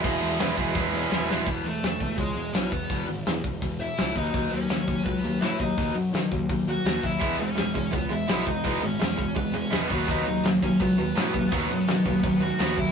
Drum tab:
CC |x-------|--------|--------|--------|
HH |--o-----|oooooooo|oooooooo|oooooooo|
SD |--o-o-oo|--o---o-|--o---o-|--o---o-|
BD |o--oo---|o--oo--o|o--oo--o|o--oo--o|

CC |--------|--------|--------|--------|
HH |oooooooo|oooooooo|oooooooo|oooooooo|
SD |--o---o-|--o---o-|--o---o-|--o---o-|
BD |o--oo--o|o--oo--o|o--oo--o|o--oo--o|

CC |--------|
HH |oooooooo|
SD |--o---o-|
BD |o--oo--o|